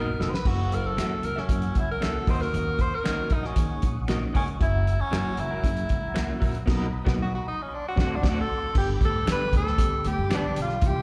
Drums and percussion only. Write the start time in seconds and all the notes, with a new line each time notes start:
0.21 snare
0.34 snare
0.45 kick, crash
0.72 closed hi-hat
0.98 finger snap, snare, closed hi-hat
1.23 closed hi-hat
1.37 snare
1.49 kick, closed hi-hat
1.62 closed hi-hat
1.75 kick, closed hi-hat
2.02 finger snap, snare, closed hi-hat
2.27 kick, open hi-hat
2.41 snare
2.54 closed hi-hat
2.79 kick, closed hi-hat
3.06 finger snap, snare, closed hi-hat
3.30 kick, closed hi-hat
3.44 snare
3.56 kick, closed hi-hat
3.82 kick, closed hi-hat
4.08 finger snap, snare, closed hi-hat
4.35 kick, open hi-hat
4.48 closed hi-hat
4.61 kick, closed hi-hat
4.87 closed hi-hat
5.13 finger snap, snare, closed hi-hat
5.37 closed hi-hat
5.64 kick, closed hi-hat
5.77 closed hi-hat
5.89 kick, closed hi-hat
6.16 finger snap, snare, closed hi-hat
6.42 kick, open hi-hat
6.55 closed hi-hat
6.68 kick, snare, crash
7.07 kick, snare
7.97 kick, snare
8.23 kick, snare, crash
8.75 kick, crash
9.01 kick, closed hi-hat
9.27 finger snap, snare, closed hi-hat
9.53 kick, closed hi-hat
9.67 snare
9.78 kick, closed hi-hat
10.05 closed hi-hat
10.31 finger snap, snare, closed hi-hat
10.56 closed hi-hat
10.69 snare
10.81 kick, closed hi-hat